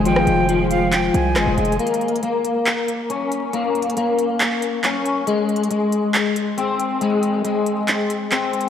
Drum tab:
HH |x-----x-----x-----x-----x-----x-----x-----x-x-x-|x-x-x-x-x-x-x-----x-----x-----x-----x-----x-----|x-----x-x-x-x-----x-----x-----x-----x-----x-----|x-----x-x-x-x-----x-----x-----x-----x-----x-----|
CP |------------------------x-----------x-----------|------------------------x-----------------------|------------------------x-----------x-----------|------------------------x-----------------------|
SD |---r--------------------------------r-----------|------------------------------------------------|------------------------------------------------|------------------------------------------------|

HH |x-----x-----x-----x-----x-----x-----x-----x-x---|
CP |------------------------x-----------x-----------|
SD |------------------------------------------------|